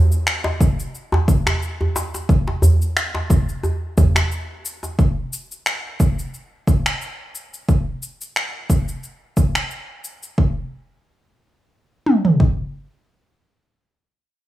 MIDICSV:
0, 0, Header, 1, 3, 480
1, 0, Start_track
1, 0, Tempo, 674157
1, 1631, Time_signature, 4, 2, 24, 8
1, 10308, End_track
2, 0, Start_track
2, 0, Title_t, "Djembe"
2, 315, Note_on_c, 9, 62, 63
2, 386, Note_off_c, 9, 62, 0
2, 800, Note_on_c, 9, 63, 77
2, 812, Note_on_c, 9, 62, 52
2, 871, Note_off_c, 9, 63, 0
2, 883, Note_off_c, 9, 62, 0
2, 1042, Note_on_c, 9, 63, 68
2, 1114, Note_off_c, 9, 63, 0
2, 1287, Note_on_c, 9, 63, 61
2, 1358, Note_off_c, 9, 63, 0
2, 1394, Note_on_c, 9, 62, 62
2, 1465, Note_off_c, 9, 62, 0
2, 1527, Note_on_c, 9, 62, 37
2, 1598, Note_off_c, 9, 62, 0
2, 1762, Note_on_c, 9, 62, 53
2, 1833, Note_off_c, 9, 62, 0
2, 1867, Note_on_c, 9, 64, 79
2, 1938, Note_off_c, 9, 64, 0
2, 2240, Note_on_c, 9, 62, 61
2, 2311, Note_off_c, 9, 62, 0
2, 2348, Note_on_c, 9, 63, 55
2, 2419, Note_off_c, 9, 63, 0
2, 2588, Note_on_c, 9, 63, 63
2, 2659, Note_off_c, 9, 63, 0
2, 2831, Note_on_c, 9, 64, 88
2, 2902, Note_off_c, 9, 64, 0
2, 2958, Note_on_c, 9, 63, 66
2, 3029, Note_off_c, 9, 63, 0
2, 3439, Note_on_c, 9, 62, 33
2, 3510, Note_off_c, 9, 62, 0
2, 10308, End_track
3, 0, Start_track
3, 0, Title_t, "Drums"
3, 84, Note_on_c, 9, 69, 46
3, 155, Note_off_c, 9, 69, 0
3, 191, Note_on_c, 9, 26, 78
3, 193, Note_on_c, 9, 69, 30
3, 262, Note_off_c, 9, 26, 0
3, 264, Note_off_c, 9, 69, 0
3, 431, Note_on_c, 9, 36, 97
3, 434, Note_on_c, 9, 69, 74
3, 503, Note_off_c, 9, 36, 0
3, 505, Note_off_c, 9, 69, 0
3, 566, Note_on_c, 9, 69, 43
3, 637, Note_off_c, 9, 69, 0
3, 675, Note_on_c, 9, 69, 32
3, 746, Note_off_c, 9, 69, 0
3, 911, Note_on_c, 9, 36, 104
3, 916, Note_on_c, 9, 69, 74
3, 983, Note_off_c, 9, 36, 0
3, 987, Note_off_c, 9, 69, 0
3, 1045, Note_on_c, 9, 26, 82
3, 1047, Note_on_c, 9, 69, 45
3, 1116, Note_off_c, 9, 26, 0
3, 1118, Note_off_c, 9, 69, 0
3, 1157, Note_on_c, 9, 69, 31
3, 1229, Note_off_c, 9, 69, 0
3, 1395, Note_on_c, 9, 69, 74
3, 1467, Note_off_c, 9, 69, 0
3, 1527, Note_on_c, 9, 69, 40
3, 1599, Note_off_c, 9, 69, 0
3, 1631, Note_on_c, 9, 36, 111
3, 1635, Note_on_c, 9, 69, 31
3, 1703, Note_off_c, 9, 36, 0
3, 1707, Note_off_c, 9, 69, 0
3, 1872, Note_on_c, 9, 69, 79
3, 1944, Note_off_c, 9, 69, 0
3, 2005, Note_on_c, 9, 69, 45
3, 2076, Note_off_c, 9, 69, 0
3, 2112, Note_on_c, 9, 26, 74
3, 2114, Note_on_c, 9, 69, 33
3, 2183, Note_off_c, 9, 26, 0
3, 2185, Note_off_c, 9, 69, 0
3, 2352, Note_on_c, 9, 36, 100
3, 2353, Note_on_c, 9, 69, 83
3, 2423, Note_off_c, 9, 36, 0
3, 2424, Note_off_c, 9, 69, 0
3, 2484, Note_on_c, 9, 69, 43
3, 2555, Note_off_c, 9, 69, 0
3, 2592, Note_on_c, 9, 69, 32
3, 2663, Note_off_c, 9, 69, 0
3, 2831, Note_on_c, 9, 36, 107
3, 2832, Note_on_c, 9, 69, 80
3, 2903, Note_off_c, 9, 36, 0
3, 2903, Note_off_c, 9, 69, 0
3, 2961, Note_on_c, 9, 26, 78
3, 2963, Note_on_c, 9, 69, 44
3, 3033, Note_off_c, 9, 26, 0
3, 3035, Note_off_c, 9, 69, 0
3, 3073, Note_on_c, 9, 69, 32
3, 3144, Note_off_c, 9, 69, 0
3, 3313, Note_on_c, 9, 69, 76
3, 3384, Note_off_c, 9, 69, 0
3, 3444, Note_on_c, 9, 69, 40
3, 3515, Note_off_c, 9, 69, 0
3, 3551, Note_on_c, 9, 36, 118
3, 3553, Note_on_c, 9, 69, 32
3, 3622, Note_off_c, 9, 36, 0
3, 3625, Note_off_c, 9, 69, 0
3, 3794, Note_on_c, 9, 69, 77
3, 3865, Note_off_c, 9, 69, 0
3, 3926, Note_on_c, 9, 69, 46
3, 3998, Note_off_c, 9, 69, 0
3, 4031, Note_on_c, 9, 26, 75
3, 4033, Note_on_c, 9, 69, 33
3, 4102, Note_off_c, 9, 26, 0
3, 4104, Note_off_c, 9, 69, 0
3, 4272, Note_on_c, 9, 36, 98
3, 4273, Note_on_c, 9, 69, 77
3, 4343, Note_off_c, 9, 36, 0
3, 4344, Note_off_c, 9, 69, 0
3, 4407, Note_on_c, 9, 69, 45
3, 4478, Note_off_c, 9, 69, 0
3, 4514, Note_on_c, 9, 69, 30
3, 4585, Note_off_c, 9, 69, 0
3, 4752, Note_on_c, 9, 36, 103
3, 4755, Note_on_c, 9, 69, 72
3, 4824, Note_off_c, 9, 36, 0
3, 4827, Note_off_c, 9, 69, 0
3, 4884, Note_on_c, 9, 26, 76
3, 4886, Note_on_c, 9, 69, 41
3, 4956, Note_off_c, 9, 26, 0
3, 4958, Note_off_c, 9, 69, 0
3, 4994, Note_on_c, 9, 69, 34
3, 5066, Note_off_c, 9, 69, 0
3, 5233, Note_on_c, 9, 69, 72
3, 5304, Note_off_c, 9, 69, 0
3, 5366, Note_on_c, 9, 69, 41
3, 5437, Note_off_c, 9, 69, 0
3, 5472, Note_on_c, 9, 36, 105
3, 5475, Note_on_c, 9, 69, 33
3, 5544, Note_off_c, 9, 36, 0
3, 5546, Note_off_c, 9, 69, 0
3, 5713, Note_on_c, 9, 69, 76
3, 5785, Note_off_c, 9, 69, 0
3, 5846, Note_on_c, 9, 69, 44
3, 5917, Note_off_c, 9, 69, 0
3, 5954, Note_on_c, 9, 26, 71
3, 5956, Note_on_c, 9, 69, 31
3, 6025, Note_off_c, 9, 26, 0
3, 6027, Note_off_c, 9, 69, 0
3, 6192, Note_on_c, 9, 36, 93
3, 6194, Note_on_c, 9, 69, 78
3, 6263, Note_off_c, 9, 36, 0
3, 6265, Note_off_c, 9, 69, 0
3, 6325, Note_on_c, 9, 69, 42
3, 6396, Note_off_c, 9, 69, 0
3, 6433, Note_on_c, 9, 69, 31
3, 6504, Note_off_c, 9, 69, 0
3, 6671, Note_on_c, 9, 36, 103
3, 6671, Note_on_c, 9, 69, 71
3, 6742, Note_off_c, 9, 36, 0
3, 6742, Note_off_c, 9, 69, 0
3, 6801, Note_on_c, 9, 26, 69
3, 6803, Note_on_c, 9, 69, 40
3, 6873, Note_off_c, 9, 26, 0
3, 6875, Note_off_c, 9, 69, 0
3, 6911, Note_on_c, 9, 69, 31
3, 6982, Note_off_c, 9, 69, 0
3, 7150, Note_on_c, 9, 69, 69
3, 7221, Note_off_c, 9, 69, 0
3, 7283, Note_on_c, 9, 69, 39
3, 7354, Note_off_c, 9, 69, 0
3, 7390, Note_on_c, 9, 36, 98
3, 7462, Note_off_c, 9, 36, 0
3, 8590, Note_on_c, 9, 47, 59
3, 8661, Note_off_c, 9, 47, 0
3, 8720, Note_on_c, 9, 43, 62
3, 8791, Note_off_c, 9, 43, 0
3, 8829, Note_on_c, 9, 36, 84
3, 8900, Note_off_c, 9, 36, 0
3, 10308, End_track
0, 0, End_of_file